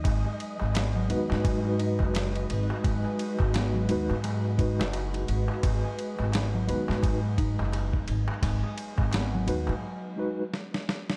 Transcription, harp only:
X:1
M:4/4
L:1/16
Q:"Swing 16ths" 1/4=86
K:G#m
V:1 name="Harp" clef=bass
G, G2 G, B, F, B, G, G, z D G, z4 | G, G2 G, B, F, B, G, G, z D G, z4 | G, G2 G, B, F, B, G, G, z D G, z4 | G, G2 G, B, F, B, G, z8 |]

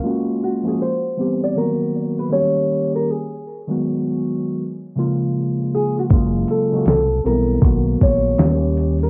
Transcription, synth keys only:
X:1
M:4/4
L:1/16
Q:"Swing 16ths" 1/4=79
K:F#
V:1 name="Synth keys"
[G,A,CEF]2 z [E,G,A,CF] z2 [=E,=G,B,=C=G]2 [D,F,A,B,F]3 z [D,G,A,^CG]3 z | z3 [D,F,G,B,F]4- [D,F,G,B,F] z2 [C,E,G,A,E]4- [C,E,G,A,E] z | [C,F,G,A,E]2 z [C,F,G,A,F] z2 [=E,=G,B,=C=E]2 [D,F,A,B,F]3 z [D,G,A,^C=G]3 z |]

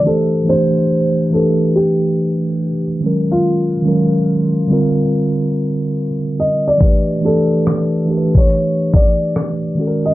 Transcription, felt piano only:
X:1
M:4/4
L:1/16
Q:"Swing 16ths" 1/4=71
K:Em
V:1 name="Felt piano"
A2 c4 A2 G4- G z2 =F- | =F12- F2 ^d =d- | d2 A4- A ^c3 d4- d ^d |]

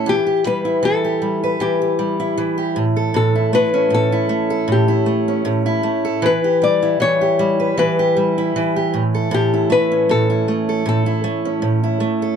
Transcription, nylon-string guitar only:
X:1
M:4/4
L:1/8
Q:"Swing 16ths" 1/4=78
K:Amix
V:1 name="Nylon-string guitar"
G B A2 G3 z | A B A2 G3 z | B d c2 B3 z | G B A2 A3 z |]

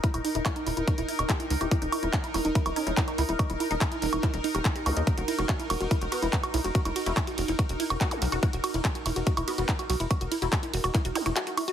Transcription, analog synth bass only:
X:1
M:4/4
L:1/16
Q:1/4=143
K:none
V:1 name="Analog synth bass" clef=bass
z _E,,, z E,,, z2 E,,, E,,, z E,,, z E,,, z2 _D,, E,,, | z _E,,, z E,,, z2 E,,, E,,, z E,,, z E,,, z2 _D,, E,,, | z _E,,, z E,,, z2 E,,, E,,, z E,,, z E,,, z2 _D,, _E,, | z E,,, z E,,, z2 E,,, E,,, z E,,, z E,,, z2 B,,, E,,, |
z E,,, z E,,, z2 E,,, E,,, z E,,, z E,,, z2 B,,, E,,, | z E,,, z E,,, z2 E,,, E,,, z E,,, z E,,, z2 B,,, E,,, | z E,,, z E,,, z2 E,,, E,,, z E,,, z E,,, z4 |]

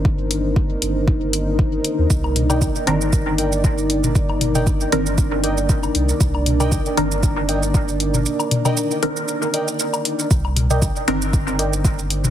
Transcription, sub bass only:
X:1
M:4/4
L:1/16
Q:"Swing 16ths" 1/4=117
K:Cm
V:1 name="Sub bass" clef=bass
G,,,4- G,,, z G,,,6- G,,, z2 E,, | C,,4 z2 G,,,8- G,,,2- | G,,,4- G,,, z G,,,6- G,,, z C,, z | C,,4 z2 G,,,8- G,,,2 |
z16 | C,,4 z2 G,,,8- G,,,2 |]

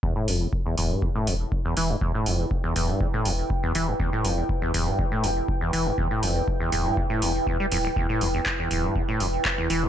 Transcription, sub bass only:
X:1
M:4/4
L:1/8
Q:1/4=121
K:Ephr
V:1 name="Sub bass" clef=bass
z E,,, z D,,, z E,,, z E,,, | z E,,, z D,,, z E,,, z E,,, | z E,,, z D,,, z E,,, z E,,, | z E,,, z D,,, z E,,, z D,,, |
z E,,, z D,,, z E,,, z E,,, |]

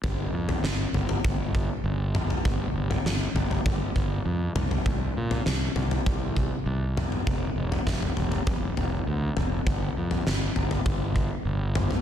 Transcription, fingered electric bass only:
X:1
M:4/4
L:1/8
Q:1/4=100
K:Gm
V:1 name="Fingered electric bass" clef=bass
G,,, F,, G,,, G,,, G,,,2 G,,,2 | G,,, G,,, G,,, G,,, G,,, G,,, F,, C,, | C,, B,, C,, C,, C,,2 C,,2 | F,,, F,,, F,,, F,,, F,,, F,,, D,, F,,, |
G,,, F,, G,,, G,,, G,,,2 G,,,2 |]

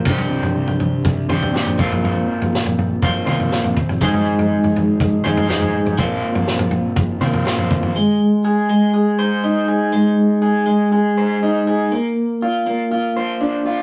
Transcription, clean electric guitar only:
X:1
M:4/4
L:1/8
Q:1/4=122
K:Ablyd
V:1 name="Clean electric guitar"
[CDGc]4- [CDGc] [CDGc] [CDGc] [B,CFc]- | [B,CFc]4 [B,CFc] [B,CFc]2 z | [A,EAc]4- [A,EAc] [A,EAc] [A,EAc]2 | [B,CFc]4- [B,CFc] [B,CFc] [B,CFc]2 |
A,2 A A, A c E A | A,2 A A, A c E A | B,2 F B, F c D F |]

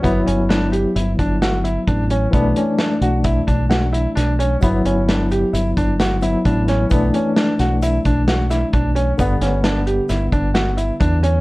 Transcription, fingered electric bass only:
X:1
M:5/4
L:1/8
Q:1/4=131
K:Glyd
V:1 name="Fingered electric bass" clef=bass
G,,, G,,,3 G,,, G,,,3 A,,,2 | B,,, z2 B,,,2 B,,,3 B,,,2 | G,,, G,,,3 G,,, G,,,3 A,,,2 | B,,, z2 B,,,2 B,,,3 B,,,2 |
G,,, G,,,3 G,,, G,,,3 E,,2 |]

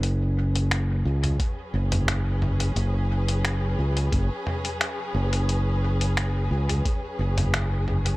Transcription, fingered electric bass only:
X:1
M:4/4
L:1/8
Q:1/4=88
K:B
V:1 name="Fingered electric bass" clef=bass
F,,,3 C,, z F,,,3 | F,,,3 C,, F,,, z2 F,,,- | F,,,3 C,, z F,,,3 |]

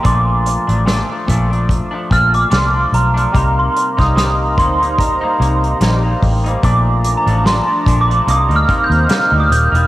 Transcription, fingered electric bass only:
X:1
M:4/4
L:1/16
Q:"Swing 16ths" 1/4=73
K:Cdor
V:1 name="Fingered electric bass" clef=bass
B,,,3 A,,,2 z B,,,3 z B,,,2 C,,2 =B,,,2 | C,,2 z C,,3 D,,4 C,,2 B,,,2 A,,,2 | B,,,3 A,,,2 z B,,,2 C,, D,, z E,, z D,, E,,, =E,,, |]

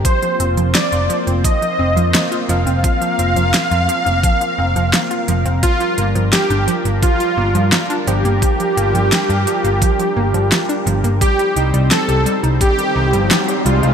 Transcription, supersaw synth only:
X:1
M:4/4
L:1/8
Q:1/4=86
K:Gm
V:1 name="Supersaw synth"
c z d z e3 f- | f8 | F z G z F3 G- | G8 |
G z A z G3 F |]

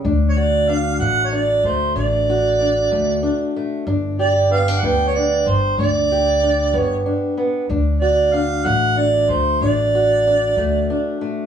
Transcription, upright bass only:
X:1
M:12/8
L:1/8
Q:3/8=63
K:D
V:1 name="Upright bass" clef=bass
D,,3 A,,,2 D,, A,,,3 D,, z2 | G,,,3 D,,2 G,,, D,,3 G,,, z2 | D,,3 A,,,2 D,, A,,,3 D,, z2 |]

